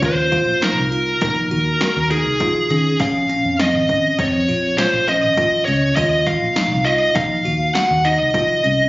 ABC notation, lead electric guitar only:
X:1
M:5/4
L:1/8
Q:1/4=101
K:Ebdor
V:1 name="Lead electric guitar"
c2 B2 B3 A3 | f2 e2 d2 c e2 d | e f2 e f2 g e3 |]